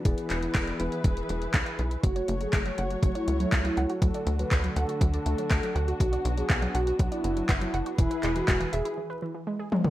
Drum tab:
HH |xxxxxxxxxxxxxxxx|xxxxxxxxxxxxxxxx|xxxxxxxxxxxxxxxx|xxxxxxxxxxxxxxxx|
CP |--x-x-------x---|----x-------x---|----x-------x---|----x-------x---|
T1 |----------------|----------------|----------------|----------------|
T2 |----------------|----------------|----------------|----------------|
BD |o---o---o---o---|o---o---o---o---|o---o---o---o---|o---o---o---o---|

HH |xxxxxxxx--------|
CP |--x-x-----------|
T1 |--------------o-|
T2 |---------------o|
BD |o---o-----------|